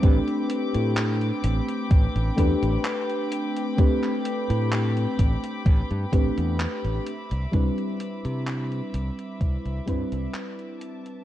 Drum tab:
HH |xxxxxxxxxxxxxxxx|xxxxxxxxxxxxxxxx|xxxxxxxxxxxxxxxx|
CP |----x-------x---|-x--x-------x---|----x-------x---|
BD |o-------o-o-----|o-----o-o-o-----|o-------o-o-----|